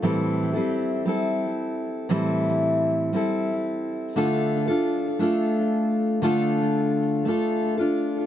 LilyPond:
\new Staff \with { instrumentName = "Steel-string acoustic guitar" } { \time 4/4 \key a \minor \tempo 4 = 58 <a, e g c' e' a'>8 <g c' e' a'>8 <g c' e' a'>4 <a, e g c' e' a'>4 <g c' e' a'>4 | <d a d' f' a'>8 <d' f' a'>8 <a d' f' a'>4 <d a d' f' a'>4 <a d' f' a'>8 <d' f' a'>8 | }